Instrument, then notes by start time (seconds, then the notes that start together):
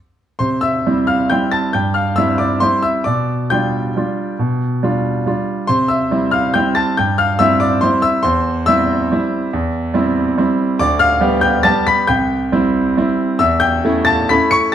grand piano
0.39 C3 C5 C6
0.61 E5 E6
0.87 G3 C4 E4
1.07 F5 F6
1.30 G3 C4 E4 G5 G6
1.52 A5 A6
1.73 G2 G5 G6
1.94 F5 F6
2.16 G3 C4 E4 E5 E6
2.38 D5 D6
2.60 G3 C4 E4 C5 C6
2.82 E5 E6
3.04 B2 D5 D6
3.50 G3 D4 F4 G5 G6
3.97 G3 D4 F4
4.39 B2
4.83 G3 D4 F4
5.26 G3 D4 F4
5.67 C3 C5 C6
5.88 E5 E6
6.11 G3 C4 E4
6.31 F5 F6
6.54 G3 C4 E4 G5 G6
6.75 A5 A6
6.97 G2 G5 G6
7.18 F5 F6
7.39 G3 C4 E4 E5 E6
7.60 D5 D6
7.81 G3 C4 E4 C5 C6
8.02 E5 E6
8.23 E2 C5 C6
8.66 G3 C4 E4 E5 E6
9.12 G3 C4 E4
9.53 E2
9.94 G3 C4 E4
10.38 G3 C4 E4
10.79 D2 D5 D6
10.99 F5 F6
11.21 G3 B3 G4
11.41 G5 G6
11.63 G3 B3 G4 A5 A6
11.87 B5 B6
12.07 C2 G5 G6
12.52 G3 C4 E4
12.97 G3 C4 E4
13.39 E2 E5 E6
13.60 G5 G6
13.84 A3 C#4 E4
14.05 A5 A6
14.29 A3 C#4 E4 B5 B6
14.51 C#6 C#7